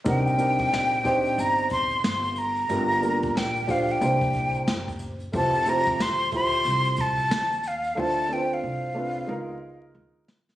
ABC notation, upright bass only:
X:1
M:4/4
L:1/8
Q:"Swing 16ths" 1/4=91
K:Cdor
V:1 name="Upright bass" clef=bass
C,,2 B,,,2 G,,,2 G,,,2 | G,,,2 B,,,2 C,,2 ^F,,,2 | F,,,2 D,,2 C,,2 E,,2 | D,,2 C,,2 _D,,2 =D,,2 |]